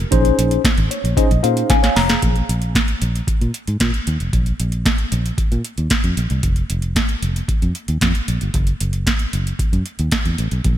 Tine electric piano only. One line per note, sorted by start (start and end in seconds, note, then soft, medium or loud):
0.11 0.60 C#4 medium
0.11 0.60 D#4 medium
0.11 0.61 G#4 medium
0.11 0.61 C5 loud
0.91 1.15 C#5 medium
1.17 1.29 C#4 medium
1.17 1.29 D#4 medium
1.17 1.29 G#4 medium
1.17 1.29 C5 medium
1.17 1.42 D#5 medium
1.43 1.80 C#4 medium
1.43 1.80 D#4 medium
1.43 1.70 G#4 medium
1.43 1.70 C5 medium
1.43 1.68 F5 medium
1.70 1.82 F5 medium
1.70 1.94 G#5 medium
1.83 2.08 C#5 medium
1.96 2.21 A#5 medium
2.09 2.34 G#4 medium